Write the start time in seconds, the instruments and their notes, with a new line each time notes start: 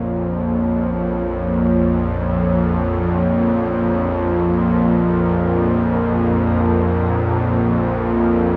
Already playing: synth drone A#1 F2, ambient pad A#3 F4 C5 C#5, singing bowl C6
2.75 ambient pad A#4